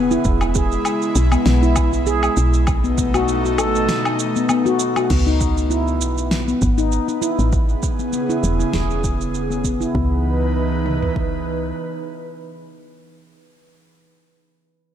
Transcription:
Already playing: E1 C#3 B3 G#4
0.11 E4, shaker
0.25 E1 G#3 E4, kick, shaker
0.41 E4, low woodblock, shaker
0.55 G#4, kick, shaker
0.72 shaker
0.85 low woodblock, shaker
1.02 shaker
1.16 B1, shaker
1.32 B3, low woodblock, shaker
1.46 B1 B3, snare, shaker
1.63 E4, shaker
1.76 kick, low woodblock, shaker
1.93 E4, shaker
2.07 G#4, shaker
2.23 low woodblock, shaker
2.37 B1, shaker
2.54 shaker
2.67 B2 A3 D#4, kick, low woodblock, shaker
2.84 B3, shaker
2.98 B3, kick, shaker
3.14 F#4, low woodblock, shaker
3.28 shaker
3.45 F#4, shaker
3.58 A1 A4, low woodblock, shaker
3.75 shaker
3.89 snare, shaker
4.05 low woodblock, shaker
4.19 shaker
4.36 B3, shaker
4.49 B3, low woodblock, shaker
4.66 F#4, shaker
4.80 shaker
4.96 F#4, low woodblock, shaker
5.10 C#2 B3, kick, crash, shaker
5.27 D#4, shaker
5.41 kick, shaker
5.57 D#4, shaker
5.70 E4, shaker
5.88 shaker
6.01 B1, shaker
6.18 shaker
6.31 snare, shaker
6.48 B3, shaker
6.61 G#1 B3, kick, shaker
6.78 D#4, shaker
6.92 shaker
7.08 D#4, shaker
7.22 E4, shaker
7.39 A1, shaker
7.53 C#3 G#4, kick, shaker
7.69 shaker
7.83 kick, shaker
7.99 B3, shaker
8.13 B3, shaker
8.29 E4, shaker
8.43 E1, shaker
8.60 E4, shaker
8.73 E1 G#4, kick, snare, shaker
8.91 shaker
9.04 kick, shaker
9.21 shaker
9.35 shaker
9.51 B3, shaker
9.64 B3, kick, shaker
9.81 E4, shaker
9.94 C#2 E3 B3 D#4 B4, kick
10.86 mid tom
11.02 floor tom
11.16 kick

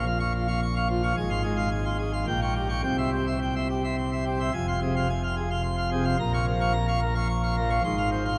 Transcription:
Already playing: A#1 A#2
0.06 F5
0.20 F5 C#6
0.34 F4
0.48 F5 C#6
0.62 C#6
0.76 F5 C#6
0.89 F3 F4
1.03 F5 C#6
1.17 G#1 G#2 G#5
1.30 F5 C6
1.44 G#3 G#4
1.57 F5 C6
1.72 G#5
1.85 F5 C6
1.99 G#4
2.13 F5 C6
2.27 A#1 A#2 G5
2.42 G5 C#6
2.55 G4
2.69 G5 C#6
2.83 C2 C3 G5
2.98 E5 C6
3.12 C4 G4
3.27 E5 C6
3.42 G5
3.56 E5 C6
3.70 G4
3.84 E5 C6
3.97 C6
4.12 E5 C6
4.26 C4 G4
4.40 E5 C6
4.54 F1 F2 G#5
4.68 F5 C6
4.82 C3 G#4
4.96 F5 C6
5.09 G#5
5.23 F5 C6
5.37 G#4
5.50 F5 C6
5.63 C6
5.77 F5 C6
5.92 C3 G#4
6.05 F5 C6
6.19 A#1 A#2 A#5
6.33 F5 C#6
6.47 F3 A#4
6.61 F5 C#6
6.73 A#5
6.88 F5 C#6
7.01 A#4
7.15 F5 C#6
7.29 C#6
7.43 F5 C#6
7.57 F3 A#4
7.70 F5 C#6
7.84 G#1 G#2 C6
7.97 F5 C6
8.11 C5
8.25 F5 C6

